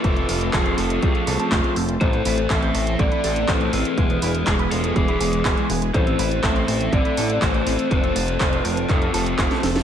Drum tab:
HH |xxoxxxoxxxoxxxox|xxoxxxoxxxoxxxox|xxoxxxoxxxoxxxox|xxoxxxoxxxoxxxox|
CP |----x-------x---|----x-------x---|----x-------x---|----x-------x---|
SD |----------------|----------------|----------------|----------------|
BD |o---o---o---o---|o---o---o---o---|o---o---o---o---|o---o---o---o---|

HH |xxoxxxoxxxoxxxox|
CP |----x---x---x---|
SD |-------------ooo|
BD |o---o---o---o---|